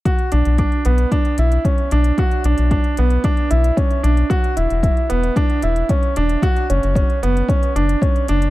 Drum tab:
HH |xxxxxxxxxxxxxxxx|xxxxxxxxxxxxxxxx|xxxxxxxxxxxxxxxx|xxxxxxxxxxxxxxxx|
BD |o---o---o---o---|o---o---o---o---|o---o---o---o---|o---o---o---o---|